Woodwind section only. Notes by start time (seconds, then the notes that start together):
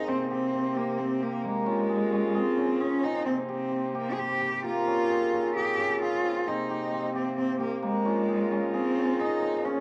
Already playing: D#4
0.08 C3 A#3
1.67 C#3 C4 D#4 F4
3.26 C3 A#3
4.86 C#3 C4 F4
6.46 C3 A#3
8.05 C#3 C4 D#4 F4
9.66 A#3 F4